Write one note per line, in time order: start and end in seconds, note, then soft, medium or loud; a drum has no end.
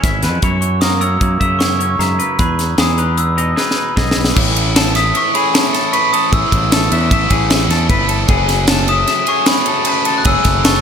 0.00 0.25 G#1 medium
0.00 0.22 E2 medium
0.00 0.46 E3 medium
0.00 0.42 B3 soft
0.00 0.41 C#4 medium
0.00 0.43 E4 medium
0.00 0.23 E5 medium
0.00 kick loud
0.00 snare soft
0.00 closed hi-hat medium
0.23 0.42 E2 medium
0.23 0.42 F2 medium
0.23 0.43 B4 medium
0.23 snare soft
0.23 closed hi-hat medium
0.42 1.99 F#2 medium
0.42 1.18 F#2 medium
0.42 1.60 E4 medium
0.42 0.82 C#5 medium
0.42 kick medium
0.42 closed hi-hat medium
0.61 0.70 C#6 medium
0.61 closed hi-hat medium
0.81 2.37 F#3 medium
0.81 1.21 A#3 medium
0.81 1.01 A#4 medium
0.81 1.02 D#6 medium
0.81 snare loud
0.81 closed hi-hat medium
1.01 1.41 C#4 medium
1.01 1.40 C#5 medium
1.01 1.39 E6 medium
1.01 closed hi-hat soft
1.21 1.40 F#2 medium
1.21 2.37 A#3 medium
1.21 kick medium
1.21 closed hi-hat medium
1.40 1.96 F#2 medium
1.40 2.37 C#3 medium
1.40 1.81 C#4 medium
1.40 1.60 E5 medium
1.40 1.61 E6 medium
1.40 kick medium
1.40 closed hi-hat medium
1.59 2.40 E4 medium
1.59 1.78 C#5 medium
1.59 2.01 C#6 medium
1.59 snare loud
1.59 closed hi-hat medium
1.79 2.38 C#4 medium
1.79 1.99 C#5 medium
1.79 closed hi-hat medium
1.99 2.18 F#2 medium
1.99 2.20 G#2 medium
1.99 2.18 E5 medium
1.99 2.40 A#5 medium
1.99 snare soft
1.99 closed hi-hat medium
2.19 2.39 F#2 medium
2.19 2.38 B4 medium
2.19 closed hi-hat medium
2.39 3.95 E2 medium
2.39 2.76 E2 medium
2.39 3.55 G#4 medium
2.39 2.79 B4 medium
2.39 2.80 B5 medium
2.39 kick loud
2.39 closed hi-hat medium
2.59 snare soft
2.59 closed hi-hat medium
2.78 3.53 E2 medium
2.78 4.34 E3 medium
2.78 3.17 G#3 medium
2.78 2.98 G#4 medium
2.78 3.20 D#6 medium
2.78 snare loud
2.78 closed hi-hat medium
2.98 3.37 D#4 medium
2.98 3.37 B4 medium
2.98 closed hi-hat medium
3.17 4.34 G#3 medium
3.17 3.55 E6 medium
3.17 closed hi-hat medium
3.37 4.33 B2 medium
3.37 3.77 D#4 medium
3.37 3.58 D#5 medium
3.37 closed hi-hat medium
3.56 3.95 G#4 medium
3.56 3.77 B4 medium
3.56 snare medium
3.71 snare medium
3.78 4.34 D#4 medium
3.78 3.97 B4 medium
3.96 4.15 B1 medium
3.96 4.36 E2 medium
3.96 4.34 G#4 medium
3.96 4.17 D#5 medium
3.96 kick loud
3.96 snare medium
4.11 snare medium
4.17 4.35 B1 medium
4.17 4.37 B4 medium
4.24 snare medium
4.35 5.11 A1 loud
4.35 5.36 A2 medium
4.35 5.35 E3 medium
4.35 5.35 A3 medium
4.35 5.34 C#4 medium
4.35 5.33 E4 loud
4.35 4.75 G#4 medium
4.35 kick loud
4.35 crash loud
4.56 ride medium
4.76 4.95 A4 medium
4.76 snare loud
4.76 ride loud
4.95 5.13 E5 medium
4.95 5.14 D#6 medium
4.95 snare soft
4.95 ride medium
5.14 5.34 E5 medium
5.14 5.36 C#6 medium
5.14 ride loud
5.33 5.51 A2 medium
5.33 5.53 E3 medium
5.33 5.54 A3 medium
5.33 5.55 C#4 medium
5.33 5.56 E4 medium
5.33 5.73 G#4 medium
5.33 5.55 B5 medium
5.33 ride medium
5.53 6.30 A2 medium
5.53 6.31 E3 medium
5.53 6.32 A3 medium
5.53 6.33 C#4 medium
5.53 6.33 E4 medium
5.53 5.90 A5 medium
5.53 snare loud
5.53 ride medium
5.73 5.92 A4 medium
5.73 snare soft
5.73 ride medium
5.93 6.13 B4 medium
5.93 6.11 C#6 loud
5.93 ride loud
6.13 6.32 A4 medium
6.13 6.33 D#6 medium
6.13 ride medium
6.31 6.42 A1 loud
6.31 7.29 A2 medium
6.31 7.31 E3 loud
6.31 7.30 A3 medium
6.31 7.29 C#4 medium
6.31 7.29 E4 loud
6.31 6.71 G#4 medium
6.31 7.46 E6 loud
6.31 kick loud
6.31 ride loud
6.52 6.88 A1 medium
6.52 kick medium
6.52 ride medium
6.72 6.91 A4 medium
6.72 snare loud
6.72 ride loud
6.92 7.10 E2 loud
6.92 7.11 E5 medium
6.92 ride medium
7.11 7.29 A1 medium
7.11 7.31 E5 medium
7.11 kick loud
7.11 ride loud
7.29 7.67 A1 medium
7.29 7.46 A2 medium
7.29 7.49 E3 medium
7.29 7.49 A3 medium
7.29 7.50 C#4 medium
7.29 7.50 E4 medium
7.29 7.70 G#4 medium
7.29 kick medium
7.29 ride medium
7.48 8.26 A2 medium
7.48 8.28 E3 medium
7.48 8.28 A3 medium
7.48 8.29 C#4 medium
7.48 8.30 E4 medium
7.48 snare loud
7.48 ride loud
7.69 7.87 E2 loud
7.69 7.89 A4 medium
7.69 snare soft
7.69 ride medium
7.89 8.26 G1 loud
7.89 8.09 B4 medium
7.89 kick loud
7.89 ride loud
8.09 8.29 A4 medium
8.09 ride medium
8.27 9.04 F#1 medium
8.27 9.28 F#2 loud
8.27 9.25 C#3 medium
8.27 9.27 F#3 medium
8.27 9.26 A3 loud
8.27 9.25 C#4 loud
8.27 8.68 G#4 loud
8.27 kick loud
8.27 ride loud
8.49 snare soft
8.49 ride medium
8.67 8.88 A4 medium
8.67 snare loud
8.67 ride loud
8.88 9.07 E5 medium
8.88 9.29 D#6 loud
8.88 ride medium
9.07 9.27 E5 medium
9.07 snare soft
9.07 ride medium
9.25 9.43 F#2 medium
9.25 9.44 C#3 medium
9.25 9.45 F#3 medium
9.25 9.45 A3 medium
9.25 9.48 C#4 medium
9.25 9.67 G#4 medium
9.25 9.48 C#6 medium
9.25 ride medium
9.45 10.22 F#2 medium
9.45 10.23 C#3 medium
9.45 10.24 F#3 medium
9.45 10.24 A3 medium
9.45 10.26 C#4 medium
9.45 9.88 B5 medium
9.45 snare loud
9.45 ride loud
9.66 9.87 A4 medium
9.66 ride medium
9.85 10.06 B4 medium
9.85 10.04 A5 medium
9.85 ride loud
10.05 10.25 A4 medium
10.05 10.17 A5 medium
10.05 ride medium
10.18 10.25 F#6 medium
10.23 10.34 F#1 loud
10.23 10.81 F#2 medium
10.23 10.81 C#3 medium
10.23 10.81 F#3 loud
10.23 10.81 A3 loud
10.23 10.81 C#4 loud
10.23 10.64 G#4 loud
10.23 10.66 E6 loud
10.23 kick loud
10.23 ride loud
10.45 10.81 F#1 medium
10.45 kick medium
10.45 snare soft
10.45 ride medium
10.65 10.81 A4 medium
10.65 10.81 C#6 loud
10.65 snare loud
10.65 ride loud